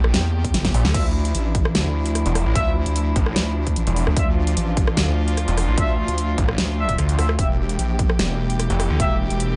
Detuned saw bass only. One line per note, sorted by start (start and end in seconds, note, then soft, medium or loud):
0.00 0.12 A#1 loud
0.74 0.83 A#1 medium
0.85 0.93 D2 loud
1.75 1.84 D2 loud
2.26 2.44 E1 medium
2.46 2.54 A1 loud
3.16 3.35 A1 loud
3.87 4.05 E1 loud
4.97 5.06 D2 loud
5.48 5.66 E1 loud
5.68 5.76 A1 loud
6.38 6.57 A1 loud
6.98 7.17 D2 loud
8.19 8.28 E1 loud
8.70 8.88 F1 loud
8.90 8.98 D2 loud